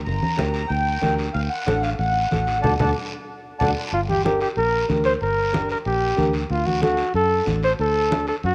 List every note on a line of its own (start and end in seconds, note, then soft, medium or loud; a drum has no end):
0.05 0.20 G1 loud
0.05 0.50 A#5 medium
0.05 high conga soft
0.05 long guiro medium
0.23 high conga medium
0.37 0.65 D2 medium
0.37 0.60 D4 medium
0.37 0.60 G4 medium
0.37 0.61 A#4 medium
0.37 high conga medium
0.37 short guiro medium
0.53 0.70 A#5 medium
0.53 short guiro medium
0.68 0.96 D2 medium
0.68 1.14 G5 medium
0.68 high conga soft
0.68 long guiro medium
1.01 1.29 D2 medium
1.01 1.25 D4 medium
1.01 1.25 G4 medium
1.01 1.25 A#4 medium
1.01 high conga medium
1.01 short guiro medium
1.19 short guiro medium
1.33 1.48 D2 medium
1.33 1.41 F5 medium
1.33 high conga soft
1.33 long guiro medium
1.49 1.64 F#5 medium
1.66 1.93 A1 loud
1.66 1.90 D4 medium
1.66 1.90 F#4 medium
1.66 1.90 A4 medium
1.66 1.82 F#5 medium
1.66 high conga medium
1.66 short guiro medium
1.82 1.90 F5 medium
1.82 short guiro medium
1.99 2.25 A1 medium
1.99 2.60 F#5 medium
1.99 high conga soft
1.99 long guiro medium
2.31 2.64 A1 medium
2.31 2.54 D4 medium
2.31 2.54 F#4 medium
2.31 2.55 A4 medium
2.31 high conga medium
2.31 short guiro medium
2.47 short guiro medium
2.62 2.76 D2 medium
2.62 2.75 D4 medium
2.62 2.75 F#4 medium
2.62 2.75 A4 medium
2.62 2.73 D5 medium
2.62 2.73 F#5 medium
2.62 2.74 A5 medium
2.62 low conga medium
2.62 long guiro medium
2.79 2.92 D2 medium
2.79 2.91 D4 medium
2.79 2.91 F#4 medium
2.79 2.91 A4 medium
2.79 2.90 D5 medium
2.79 2.90 F#5 medium
2.79 2.91 A5 medium
2.79 low conga loud
2.79 long guiro medium
3.59 3.73 D2 medium
3.59 3.72 D4 medium
3.59 3.72 F#4 medium
3.59 3.72 A4 medium
3.59 3.70 D5 medium
3.59 3.70 F#5 medium
3.59 3.70 A5 medium
3.59 low conga medium
3.59 long guiro medium
3.92 4.44 G1 medium
3.92 4.00 F4 medium
3.92 high conga soft
3.92 long guiro medium
4.09 4.24 G4 medium
4.09 high conga medium
4.24 4.47 D4 medium
4.24 4.48 G4 medium
4.24 4.40 G4 medium
4.24 4.48 A#4 medium
4.24 high conga medium
4.24 short guiro medium
4.41 4.49 G4 medium
4.41 short guiro medium
4.56 4.83 A#1 medium
4.56 4.87 A#4 loud
4.56 high conga soft
4.56 long guiro medium
4.88 5.15 D2 medium
4.88 5.12 D4 medium
4.88 5.12 G4 medium
4.88 5.12 A#4 medium
4.88 high conga medium
4.88 short guiro medium
5.04 5.13 C5 medium
5.04 short guiro medium
5.21 5.73 G1 medium
5.21 5.67 A#4 medium
5.21 high conga soft
5.21 long guiro medium
5.53 5.76 D4 medium
5.53 5.76 G4 medium
5.53 5.77 A#4 medium
5.53 high conga medium
5.53 short guiro medium
5.69 5.78 A#4 medium
5.69 short guiro medium
5.85 6.12 A#1 medium
5.85 6.31 G4 medium
5.85 high conga soft
5.85 long guiro medium
6.16 6.44 D2 medium
6.16 6.40 D4 medium
6.16 6.41 G4 medium
6.16 6.41 A#4 medium
6.16 high conga medium
6.16 short guiro medium
6.33 short guiro medium
6.50 7.02 D2 medium
6.50 6.68 F4 medium
6.50 high conga soft
6.50 long guiro medium
6.66 6.82 F#4 medium
6.66 high conga medium
6.81 7.05 D4 medium
6.81 7.05 F#4 medium
6.81 7.13 F#4 medium
6.81 7.05 A4 medium
6.81 high conga medium
6.81 short guiro medium
6.97 short guiro medium
7.14 7.41 F#2 medium
7.14 7.45 A4 medium
7.14 high conga soft
7.14 long guiro medium
7.45 7.73 A1 medium
7.45 7.69 D4 medium
7.45 7.69 F#4 medium
7.45 7.69 A4 medium
7.45 high conga medium
7.45 short guiro medium
7.63 7.71 C5 medium
7.63 short guiro medium
7.79 8.31 D2 medium
7.79 8.26 A4 medium
7.79 high conga soft
7.79 long guiro medium
8.11 8.34 D4 medium
8.11 8.34 F#4 medium
8.11 8.34 A4 medium
8.11 high conga medium
8.11 short guiro medium
8.27 8.35 A4 medium
8.27 short guiro medium
8.43 8.55 F#2 medium
8.43 8.55 F#4 medium
8.43 high conga soft
8.43 long guiro medium